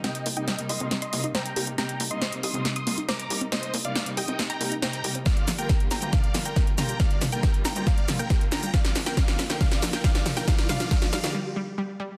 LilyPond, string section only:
\new Staff \with { instrumentName = "String section" } { \clef bass \time 4/4 \key c \minor \tempo 4 = 138 <c g bes ees'>8 r16 <c g bes ees'>8 <c g bes ees'>8 <c g bes ees'>8 r16 <c g bes ees'>8 <c g bes ees'>8 <c g bes ees'>8 | <c g bes ees'>8 r16 <c g bes ees'>8 <c g bes ees'>8 <c g bes ees'>8 r16 <c g bes ees'>8 <c g bes ees'>8 <c g bes ees'>8 | <c g bes ees'>8 r16 <c g bes ees'>8 <c g bes ees'>8 <c g bes ees'>8 r16 <c g bes ees'>8 <c g bes ees'>8 <c g bes ees'>8 | <d g bes f'>8 r16 <d g bes f'>8 <d g bes f'>8 <d g bes f'>8 r16 <d g bes f'>8 <d g bes f'>8 <d g bes f'>8 |
<d g bes f'>8 r16 <d g bes f'>8 <d g bes f'>8 <d g bes f'>8 r16 <d g bes f'>8 <d g bes f'>8 <d g bes f'>8 | <d f bes f'>8 r16 <d f bes f'>8 <d f bes f'>8 <d f bes f'>8 r16 <d f bes f'>8 <d f bes f'>8 <d f bes f'>8 | <d f bes f'>8 r16 <d f bes f'>8 <d f bes f'>8 <d f bes f'>16 r2 | }